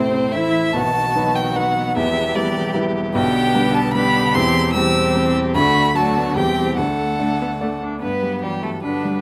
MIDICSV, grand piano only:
0, 0, Header, 1, 2, 480
1, 0, Start_track
1, 0, Key_signature, 1, "minor"
1, 0, Tempo, 401875
1, 892, Time_signature, 3, 2, 24, 8
1, 3772, Key_signature, 1, "major"
1, 7596, Tempo, 410397
1, 10931, End_track
2, 0, Start_track
2, 0, Title_t, "Grand piano"
2, 0, Program_c, 0, 0
2, 0, Control_c, 0, 64, 127
2, 0, Note_on_c, 0, 33, 51
2, 0, Note_on_c, 0, 45, 45
2, 0, Note_on_c, 0, 57, 44
2, 0, Note_on_c, 0, 64, 41
2, 0, Note_on_c, 0, 72, 46
2, 354, Note_off_c, 0, 57, 0
2, 356, Note_off_c, 0, 64, 0
2, 358, Note_off_c, 0, 72, 0
2, 396, Note_on_c, 0, 57, 40
2, 398, Note_on_c, 0, 64, 41
2, 403, Note_on_c, 0, 72, 47
2, 844, Note_off_c, 0, 57, 0
2, 845, Note_off_c, 0, 64, 0
2, 847, Note_off_c, 0, 72, 0
2, 850, Note_off_c, 0, 33, 0
2, 853, Note_off_c, 0, 45, 0
2, 878, Note_on_c, 0, 35, 54
2, 881, Note_on_c, 0, 47, 54
2, 917, Control_c, 0, 64, 0
2, 1136, Control_c, 0, 64, 127
2, 1378, Note_on_c, 0, 54, 45
2, 1380, Note_on_c, 0, 63, 48
2, 1385, Note_on_c, 0, 71, 51
2, 1810, Note_off_c, 0, 54, 0
2, 1811, Note_off_c, 0, 63, 0
2, 1814, Note_off_c, 0, 71, 0
2, 1857, Note_on_c, 0, 54, 46
2, 1863, Note_on_c, 0, 63, 44
2, 1866, Note_on_c, 0, 71, 48
2, 2287, Note_off_c, 0, 35, 0
2, 2289, Note_off_c, 0, 47, 0
2, 2290, Note_off_c, 0, 54, 0
2, 2293, Note_off_c, 0, 63, 0
2, 2295, Note_off_c, 0, 71, 0
2, 2342, Note_on_c, 0, 28, 64
2, 2345, Note_on_c, 0, 40, 64
2, 2363, Control_c, 0, 64, 0
2, 2520, Control_c, 0, 64, 127
2, 2811, Note_on_c, 0, 55, 54
2, 2812, Note_on_c, 0, 64, 51
2, 2814, Note_on_c, 0, 71, 52
2, 3243, Note_off_c, 0, 55, 0
2, 3244, Note_off_c, 0, 64, 0
2, 3245, Note_off_c, 0, 71, 0
2, 3276, Note_on_c, 0, 55, 54
2, 3283, Note_on_c, 0, 64, 54
2, 3287, Note_on_c, 0, 71, 57
2, 3715, Note_off_c, 0, 55, 0
2, 3719, Note_off_c, 0, 64, 0
2, 3721, Note_off_c, 0, 71, 0
2, 3730, Note_off_c, 0, 28, 0
2, 3732, Note_off_c, 0, 40, 0
2, 3757, Note_on_c, 0, 47, 67
2, 3762, Note_on_c, 0, 35, 75
2, 3796, Control_c, 0, 64, 0
2, 3985, Control_c, 0, 64, 127
2, 4238, Note_on_c, 0, 55, 55
2, 4241, Note_on_c, 0, 62, 54
2, 4245, Note_on_c, 0, 71, 61
2, 4670, Note_off_c, 0, 55, 0
2, 4672, Note_off_c, 0, 62, 0
2, 4674, Note_off_c, 0, 71, 0
2, 4705, Note_on_c, 0, 55, 55
2, 4709, Note_on_c, 0, 62, 55
2, 4720, Note_on_c, 0, 71, 59
2, 5142, Note_off_c, 0, 55, 0
2, 5145, Note_off_c, 0, 62, 0
2, 5148, Note_off_c, 0, 47, 0
2, 5150, Note_off_c, 0, 71, 0
2, 5151, Note_off_c, 0, 35, 0
2, 5198, Note_on_c, 0, 40, 78
2, 5201, Note_on_c, 0, 28, 67
2, 5220, Control_c, 0, 64, 0
2, 5435, Control_c, 0, 64, 127
2, 5669, Note_on_c, 0, 55, 53
2, 5674, Note_on_c, 0, 60, 54
2, 5680, Note_on_c, 0, 72, 61
2, 6103, Note_off_c, 0, 55, 0
2, 6105, Note_off_c, 0, 60, 0
2, 6108, Note_off_c, 0, 72, 0
2, 6157, Note_on_c, 0, 55, 48
2, 6162, Note_on_c, 0, 60, 55
2, 6165, Note_on_c, 0, 72, 54
2, 6588, Note_off_c, 0, 55, 0
2, 6591, Note_off_c, 0, 40, 0
2, 6591, Note_off_c, 0, 60, 0
2, 6592, Note_off_c, 0, 28, 0
2, 6592, Note_off_c, 0, 72, 0
2, 6628, Note_on_c, 0, 38, 68
2, 6631, Note_on_c, 0, 50, 59
2, 6660, Control_c, 0, 64, 0
2, 6870, Control_c, 0, 64, 127
2, 7100, Note_on_c, 0, 54, 49
2, 7109, Note_on_c, 0, 69, 51
2, 7110, Note_on_c, 0, 62, 48
2, 7542, Note_off_c, 0, 54, 0
2, 7546, Note_off_c, 0, 62, 0
2, 7546, Note_off_c, 0, 69, 0
2, 7565, Note_off_c, 0, 38, 0
2, 7567, Note_off_c, 0, 50, 0
2, 7588, Note_on_c, 0, 28, 52
2, 7593, Note_on_c, 0, 40, 59
2, 7593, Note_on_c, 0, 55, 43
2, 7601, Note_on_c, 0, 67, 41
2, 7609, Note_on_c, 0, 72, 42
2, 7621, Control_c, 0, 64, 0
2, 7780, Control_c, 0, 64, 127
2, 8031, Note_off_c, 0, 55, 0
2, 8035, Note_off_c, 0, 67, 0
2, 8040, Note_off_c, 0, 72, 0
2, 8061, Note_off_c, 0, 28, 0
2, 8064, Note_off_c, 0, 40, 0
2, 8080, Note_on_c, 0, 38, 53
2, 8083, Note_on_c, 0, 50, 51
2, 8105, Control_c, 0, 64, 0
2, 8301, Control_c, 0, 64, 127
2, 8566, Note_on_c, 0, 57, 39
2, 8570, Note_on_c, 0, 62, 41
2, 8580, Note_on_c, 0, 74, 43
2, 9005, Note_off_c, 0, 57, 0
2, 9007, Note_off_c, 0, 62, 0
2, 9012, Note_off_c, 0, 74, 0
2, 9055, Note_on_c, 0, 57, 38
2, 9058, Note_on_c, 0, 74, 40
2, 9060, Note_on_c, 0, 62, 36
2, 9490, Note_off_c, 0, 57, 0
2, 9492, Note_off_c, 0, 38, 0
2, 9492, Note_off_c, 0, 74, 0
2, 9493, Note_off_c, 0, 50, 0
2, 9493, Note_off_c, 0, 62, 0
2, 9537, Note_on_c, 0, 43, 40
2, 9558, Control_c, 0, 64, 0
2, 9770, Control_c, 0, 64, 127
2, 9777, Note_on_c, 0, 55, 32
2, 10025, Note_on_c, 0, 54, 27
2, 10154, Note_off_c, 0, 55, 0
2, 10254, Note_off_c, 0, 54, 0
2, 10255, Note_on_c, 0, 55, 28
2, 10495, Note_on_c, 0, 50, 30
2, 10630, Note_off_c, 0, 55, 0
2, 10738, Note_on_c, 0, 55, 35
2, 10868, Note_off_c, 0, 50, 0
2, 10915, Note_off_c, 0, 43, 0
2, 10931, Note_off_c, 0, 55, 0
2, 10931, End_track
0, 0, End_of_file